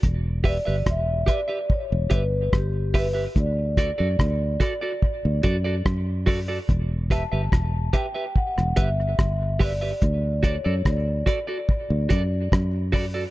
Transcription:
<<
  \new Staff \with { instrumentName = "Vibraphone" } { \time 4/4 \key e \minor \tempo 4 = 72 r8 d''8 e''8 d''8 cis''8 b'8 g'8 b'8 | d''2. r4 | r8 a''4 g''8 fis''8 e''4 d''8~ | d''8 cis''8 d''2 r4 | }
  \new Staff \with { instrumentName = "Clean electric guitar" } { \time 4/4 \key e \minor r8 <g' b' e''>16 <g' b' e''>16 r8 <g' b' e''>16 <g' b' e''>16 r8 <g' b' e''>16 r8. <g' b' e''>16 <g' b' e''>16 | r8 <fis' a' d''>16 <fis' a' d''>16 r8 <fis' a' d''>16 <fis' a' d''>16 r8 <fis' a' d''>16 <fis' a' d''>16 r8 <fis' a' d''>16 <fis' a' d''>16 | r8 <g' b' e''>16 <g' b' e''>16 r8 <g' b' e''>16 <g' b' e''>16 r8 <g' b' e''>16 r8. <g' b' e''>16 <g' b' e''>16 | r8 <fis' a' d''>16 <fis' a' d''>16 r8 <fis' a' d''>16 <fis' a' d''>16 r8 <fis' a' d''>16 r8. <fis' a' d''>16 <fis' a' d''>16 | }
  \new Staff \with { instrumentName = "Fingered electric bass" } { \clef bass \time 4/4 \key e \minor e,,8. g,,16 e,,8 r8. e,,16 g,,8 g,,4 | d,8. fis,16 d,8 r8. d,16 fis,8 fis,4 | e,,8. g,,16 e,,8 r8. e,,16 g,,8 g,,4 | d,8. fis,16 d,8 r8. d,16 fis,8 fis,4 | }
  \new DrumStaff \with { instrumentName = "Drums" } \drummode { \time 4/4 <hhp bd>8 <hho bd>8 <hhp bd ss>8 <hh bd>8 bd8 <hh bd>8 <bd ss>8 <hho bd>8 | <hhp bd>8 <hh bd>8 <bd ss>8 <hh bd>8 bd8 <hh bd>8 <bd ss>8 <hho bd>8 | <hhp bd>8 <hh bd>8 <bd ss>8 <hh bd>8 bd16 ss16 <hh bd>8 <bd ss>8 <hho bd>8 | <hhp bd>8 <hh bd>8 <bd ss>8 <hh bd>8 bd8 <hh bd>8 <bd ss>8 <hho bd>8 | }
>>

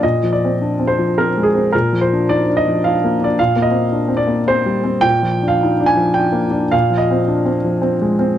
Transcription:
\new Staff \with { instrumentName = "Grand piano" } { \time 3/4 \key bes \mixolydian \tempo 4 = 106 << { ees''8 d''4 c''8 bes'8 aes'8 | bes'8 c''8 d''8 ees''8 f''8. d''16 | f''8 ees''4 d''8 c''4 | g''8. f''8. aes''8 g''4 |
f''8 ees''4 r4. | } \\ { \tuplet 3/2 { bes,8 f8 c'8 d'8 c'8 f8 c'8 aes8 c'8 } | \tuplet 3/2 { bes,8 f8 d'8 ees'8 d'8 f8 d'8 bes8 d'8 } | \tuplet 3/2 { bes,8 bes8 c'8 d'8 c'8 bes8 c'8 g8 c'8 } | \tuplet 3/2 { bes,8 f8 d'8 ees'8 d'8 f8 d'8 bes8 d'8 } |
\tuplet 3/2 { bes,8 f8 c'8 d'8 c'8 f8 c'8 aes8 c'8 } | } >> }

